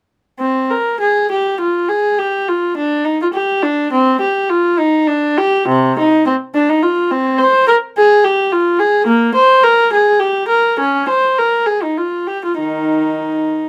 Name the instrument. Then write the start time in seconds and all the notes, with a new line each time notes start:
viola
0.39 C4
0.71 A#4
1.00 G#4
1.31 G4
1.60 F4
1.89 G#4
2.19 G4
2.48 F4
2.77 D4
3.05 D#4
3.22 F4
3.34 G4
3.62 D4
3.93 C4
4.21 G4
4.50 F4
4.79 D#4
5.07 D4
5.38 G4
5.68 C3
5.99 D#4
6.26 C4
6.54 D4
6.69 D#4
6.82 F4
7.11 C4
7.39 C5
7.68 A#4
7.97 G#4
8.24 G4
8.52 F4
8.79 G#4
9.07 A#3
9.34 C5
9.63 A#4
9.93 G#4
10.20 G4
10.48 A#4
10.79 C#4
11.08 C5
11.38 A#4
11.66 G#4
11.83 D#4
11.97 F4
12.27 G4
12.45 F4
12.59 D#3 D#4